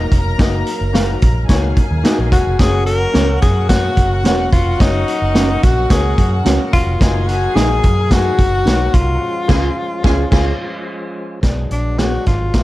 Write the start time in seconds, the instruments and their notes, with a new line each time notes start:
Already playing: tonewheel organ F#3 A#3 D#4 A#4, upright piano A#3 D#4 F#4 D#5, string section A#4 A#5
0.12 fingered electric bass F1, kick, closed hi-hat
0.38 fingered electric bass F#1, upright piano A#3 D#4 F#4 D#5, kick, snare, closed hi-hat
0.66 closed hi-hat
0.81 fingered electric bass F#1
0.93 upright piano A#3 D#4 F#4 F5, clean electric guitar D#4 F#4 A#4, snare, closed hi-hat
1.22 fingered electric bass A#1, kick, closed hi-hat
1.48 fingered electric bass C#2, upright piano A#3 D#4 F#4 C#5, string section G#4 G#5, kick, snare, closed hi-hat
1.77 kick, closed hi-hat
1.91 fingered electric bass D#2
2.03 upright piano A#3 D#4 F#4 D#5, clean electric guitar D#4 F#4 A#4, snare, closed hi-hat
2.19 fingered electric bass A#1
2.32 fingered electric bass E1, tenor saxophone F#4, kick, closed hi-hat
2.47 fingered electric bass F1
2.59 fingered electric bass F#1, tonewheel organ F#3 C#4, upright piano A#3 C#4 F#4 C#5, string section F#4 F#5, tenor saxophone G#4, kick, snare, closed hi-hat
2.87 tenor saxophone A#4, closed hi-hat
3.13 fingered electric bass C#2, upright piano A#3 C#4 F#4 C#5, clean electric guitar C#4 F#4 A#4, snare, closed hi-hat
3.42 fingered electric bass F#2, tenor saxophone G#4, kick, snare, closed hi-hat
3.69 upright piano A#3 C#4 F#4 C#5, tenor saxophone F#4, kick, snare, closed hi-hat
3.97 fingered electric bass F#1, kick, closed hi-hat
4.24 fingered electric bass E1, upright piano A#3 C#4 F#4 C#5, clean electric guitar C#4 F#4 A#4, tenor saxophone F#4, snare, closed hi-hat
4.52 fingered electric bass F1, tenor saxophone F4, kick, closed hi-hat
4.79 fingered electric bass F#1, upright piano A#3 C#4 F#4 C#5, tenor saxophone D#4, kick, snare, closed hi-hat
5.08 closed hi-hat
5.22 fingered electric bass F#1
5.34 upright piano A#3 C#4 F#4 D#5, clean electric guitar C#4 F#4 A#4, snare, closed hi-hat
5.63 fingered electric bass A#1, tenor saxophone F#4, kick, snare, closed hi-hat
5.90 fingered electric bass C#2, upright piano A#3 C#4 F#4 C#5, tenor saxophone G#4, kick, snare, closed hi-hat
6.18 fingered electric bass F#2, kick, closed hi-hat
6.44 fingered electric bass C#2, upright piano A#3 C#4 F#4 C#5, clean electric guitar C#4 F#4 A#4, snare, closed hi-hat
6.73 fingered electric bass E1, tenor saxophone F4, kick, closed hi-hat
6.86 fingered electric bass F1
6.99 fingered electric bass F#1, upright piano A#3 D#4 F#4 D#5, tonewheel organ D#4, string section G#4 G#5, kick, snare, closed hi-hat
7.28 tenor saxophone F#4, closed hi-hat
7.55 fingered electric bass A#1, upright piano A#3 D#4 F#4 D#5, clean electric guitar D#4 F#4 A#4, tenor saxophone G#4, snare, closed hi-hat
7.83 fingered electric bass F#2, kick, closed hi-hat
8.10 upright piano A#3 D#4 F#4 G#4, tenor saxophone F#4, kick, snare, closed hi-hat
8.39 fingered electric bass F#1, string section F#4 F#5, kick, closed hi-hat
8.65 fingered electric bass B1, upright piano A#3 D#4 F#4 C#5, clean electric guitar D#4 F#4 A#4, snare, closed hi-hat
8.94 fingered electric bass C2, tenor saxophone F4, kick, closed hi-hat
9.20 tonewheel organ F3 G#3 C#4 F4
9.48 fingered electric bass C#2, upright piano C#3 C#4 F4 G#4 F5, clean electric guitar C#4 F4 G#4, string section G#4 G#5, kick, snare, crash
10.03 fingered electric bass C#2, upright piano C#4 F4 G#4 F5, clean electric guitar C#4 F4 G#4, string section G#4 G#5, kick, snare
10.31 fingered electric bass C#2, upright piano C#4 F4 G#4 F5, clean electric guitar C#4 F4 G#4, string section G#4 G#5, kick, snare, crash
11.41 fingered electric bass B1, tonewheel organ F#3 G#3 B3 D4, upright piano B3 G#4 D5, kick, snare, closed hi-hat
11.71 fingered electric bass A#1, tenor saxophone D4, closed hi-hat
11.98 clean electric guitar B3 D4 G#4, upright piano B3 G#4 C#5, tenor saxophone F#4, snare, closed hi-hat
12.26 fingered electric bass G#1, tenor saxophone F4, kick, snare, closed hi-hat
12.54 fingered electric bass A#1, upright piano B3 G#4 F5, kick, snare, closed hi-hat